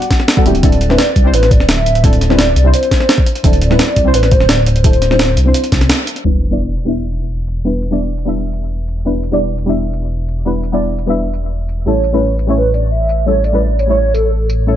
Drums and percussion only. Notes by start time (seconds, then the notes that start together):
0.02 closed hi-hat
0.11 kick, snare, closed hi-hat
0.20 snare
0.28 snare, closed hi-hat
0.37 kick
0.46 closed hi-hat
0.55 closed hi-hat
0.63 kick, closed hi-hat
0.72 closed hi-hat
0.81 closed hi-hat
0.90 snare
0.98 snare, closed hi-hat
1.16 kick, closed hi-hat
1.34 closed hi-hat
1.43 snare, closed hi-hat
1.51 kick, closed hi-hat
1.60 snare
1.69 snare, closed hi-hat
1.86 closed hi-hat
1.95 closed hi-hat
2.04 kick, closed hi-hat
2.13 closed hi-hat
2.21 snare, closed hi-hat
2.30 snare
2.39 snare, closed hi-hat
2.56 closed hi-hat
2.74 closed hi-hat
2.83 closed hi-hat
2.91 kick, snare, closed hi-hat
3.00 snare
3.09 snare, closed hi-hat
3.18 kick
3.26 closed hi-hat
3.35 closed hi-hat
3.44 kick, closed hi-hat
3.53 closed hi-hat
3.62 closed hi-hat
3.71 snare
3.79 snare, closed hi-hat
3.96 kick, closed hi-hat
4.14 closed hi-hat
4.23 snare, closed hi-hat
4.31 kick, closed hi-hat
4.40 snare
4.49 snare, closed hi-hat
4.66 closed hi-hat
4.76 closed hi-hat
4.84 kick, closed hi-hat
4.93 closed hi-hat
5.02 snare, closed hi-hat
5.11 snare
5.19 snare, closed hi-hat
5.37 closed hi-hat
5.54 closed hi-hat
5.64 closed hi-hat
5.72 kick, snare, closed hi-hat
5.81 snare, closed hi-hat
5.90 snare, closed hi-hat
6.07 closed hi-hat
6.16 closed hi-hat
6.42 tambourine
6.77 tambourine
7.12 tambourine
7.48 tambourine
7.83 tambourine
8.18 tambourine
8.53 tambourine
8.88 tambourine
9.23 tambourine
9.58 tambourine
9.93 tambourine
10.29 tambourine
10.63 tambourine
10.99 tambourine
11.34 tambourine
11.69 tambourine
12.04 tambourine
12.39 tambourine
12.74 tambourine
13.09 tambourine
13.44 tambourine
13.79 tambourine
14.15 tambourine
14.50 tambourine